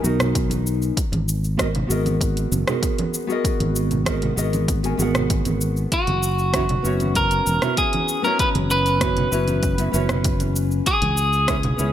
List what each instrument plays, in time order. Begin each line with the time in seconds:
0.02 fingered electric bass B1, nylon-string guitar B3 D#4 F#4 A#4, high conga, shaker
0.06 nylon-string guitar D#5
0.19 cross-stick, closed hi-hat, low conga, shaker
0.35 kick, closed hi-hat, shaker
0.50 closed hi-hat, high conga, shaker
0.67 shaker
0.82 shaker
0.97 kick, closed hi-hat, shaker
1.12 fingered electric bass G#1, closed hi-hat, high conga
1.28 shaker
1.44 shaker
1.57 nylon-string guitar B3 F#4 G#4 A#4 D#5, kick, cross-stick, closed hi-hat, high conga, shaker
1.75 closed hi-hat, low conga
1.87 fingered electric bass G#1, nylon-string guitar B3 F#4 G#4 A#4, shaker
1.92 nylon-string guitar D#5
2.06 closed hi-hat, high conga, shaker
2.21 kick, closed hi-hat, shaker
2.37 closed hi-hat, shaker
2.52 fingered electric bass F#1, high conga, shaker
2.67 nylon-string guitar B3 F#4 G#4 A#4 D#5, cross-stick, closed hi-hat, low conga, shaker
2.83 kick, closed hi-hat, shaker
2.98 closed hi-hat, high conga
3.14 shaker
3.27 nylon-string guitar B3 F#4 G#4 A#4, shaker
3.32 nylon-string guitar D#5
3.45 kick, closed hi-hat, shaker
3.60 fingered electric bass G#1, closed hi-hat, high conga
3.76 shaker
3.91 closed hi-hat, low conga, shaker
4.05 nylon-string guitar B3 F#4 G#4 A#4 D#5, kick, cross-stick, closed hi-hat, high conga, shaker
4.22 closed hi-hat, low conga
4.36 fingered electric bass G#1, nylon-string guitar B3 F#4 G#4 A#4 D#5, shaker
4.53 closed hi-hat, high conga, shaker
4.68 kick, closed hi-hat, shaker
4.83 nylon-string guitar B3 F#4 G#4 A#4 G#5, closed hi-hat, shaker
4.97 fingered electric bass G#1, nylon-string guitar B3 F#4 G#4 A#4, high conga, shaker
5.02 nylon-string guitar F#5
5.15 cross-stick, closed hi-hat, low conga, shaker
5.30 kick, closed hi-hat, shaker
5.45 fingered electric bass G#1, closed hi-hat, high conga, shaker
5.61 shaker
5.77 shaker
5.92 clean electric guitar F#4, kick, closed hi-hat, shaker
6.07 fingered electric bass F#1, closed hi-hat, high conga
6.23 shaker
6.39 shaker
6.53 nylon-string guitar B3 C#4 E4 F#4 C#5, kick, cross-stick, closed hi-hat, high conga, shaker
6.69 closed hi-hat, low conga
6.83 fingered electric bass F#1, nylon-string guitar B3 C#4 E4 F#4, shaker
6.87 nylon-string guitar C#5
7.00 closed hi-hat, high conga, shaker
7.15 clean electric guitar A#4, kick, closed hi-hat, shaker
7.31 closed hi-hat, shaker
7.47 fingered electric bass E1, high conga, shaker
7.61 nylon-string guitar B3 C#4 E4 F#4 C#5, cross-stick, closed hi-hat, low conga, shaker
7.77 clean electric guitar G#4, kick, closed hi-hat, shaker
7.93 closed hi-hat, high conga
8.08 shaker
8.22 nylon-string guitar B3 C#4 E4 F#4, clean electric guitar A#4, shaker
8.27 nylon-string guitar C#5
8.39 clean electric guitar B4, kick, closed hi-hat, shaker
8.55 fingered electric bass F#1, closed hi-hat, high conga
8.70 clean electric guitar B4, shaker
8.86 closed hi-hat, shaker
9.00 nylon-string guitar B3 C#4 E4 F#4 C#5, kick, cross-stick, closed hi-hat, high conga, shaker
9.17 closed hi-hat, low conga
9.31 fingered electric bass F#1, nylon-string guitar B3 C#4 E4 F#4 C#5, shaker
9.48 closed hi-hat, high conga, shaker
9.63 kick, closed hi-hat, shaker
9.78 nylon-string guitar B3 C#4 E4 F#4 E5, closed hi-hat, shaker
9.92 fingered electric bass F#1, nylon-string guitar B3 C#4 E4 F#4, high conga, shaker
9.96 nylon-string guitar C#5
10.09 cross-stick, closed hi-hat, low conga, shaker
10.24 kick, closed hi-hat, shaker
10.40 closed hi-hat, high conga, shaker
10.56 shaker
10.71 shaker
10.86 clean electric guitar G#4, kick, closed hi-hat, shaker
11.02 fingered electric bass C#2, closed hi-hat, high conga
11.17 shaker
11.33 shaker
11.47 nylon-string guitar B3 C#4 E4 G#4 C#5, kick, cross-stick, closed hi-hat, high conga, shaker
11.63 closed hi-hat, low conga
11.77 fingered electric bass C#2, nylon-string guitar B3 C#4 E4 G#4, shaker
11.81 nylon-string guitar C#5